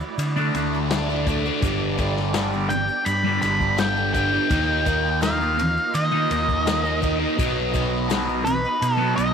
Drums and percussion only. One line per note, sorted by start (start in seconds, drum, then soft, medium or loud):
0.00 shaker soft
0.19 ride medium
0.19 shaker medium
0.37 shaker soft
0.55 ride medium
0.55 shaker medium
0.74 shaker soft
0.91 snare medium
0.91 ride medium
0.91 shaker medium
1.10 shaker soft
1.27 kick medium
1.27 ride medium
1.27 shaker medium
1.45 shaker soft
1.62 kick loud
1.62 ride medium
1.62 shaker medium
1.98 kick medium
1.98 ride medium
1.98 shaker medium
2.16 snare soft
2.34 snare loud
2.34 ride medium
2.34 shaker medium
2.53 shaker soft
2.70 ride medium
2.70 shaker medium
2.88 shaker soft
3.06 ride medium
3.06 shaker medium
3.42 snare soft
3.42 ride medium
3.42 shaker medium
3.60 kick medium
3.60 shaker soft
3.78 snare loud
3.78 ride medium
3.78 shaker medium
3.96 shaker soft
4.14 kick medium
4.14 ride medium
4.14 shaker medium
4.50 kick loud
4.50 ride loud
4.50 shaker medium
4.86 kick medium
4.86 ride medium
4.86 shaker medium
5.22 snare loud
5.22 ride medium
5.22 shaker medium
5.41 shaker soft
5.59 ride medium
5.59 shaker medium
5.77 shaker soft
5.94 ride medium
5.94 shaker medium
6.31 ride medium
6.31 shaker medium
6.49 kick medium
6.49 shaker soft
6.67 snare loud
6.67 ride medium
6.67 shaker medium
6.85 shaker soft
7.02 kick medium
7.02 ride medium
7.02 shaker medium
7.39 kick loud
7.39 ride medium
7.39 shaker medium
7.74 kick medium
7.74 ride medium
7.74 shaker medium
8.10 snare loud
8.10 ride medium
8.10 shaker loud
8.29 shaker soft
8.46 ride medium
8.46 shaker medium
8.64 shaker soft
8.82 ride medium
8.82 shaker medium
9.18 ride medium
9.18 shaker medium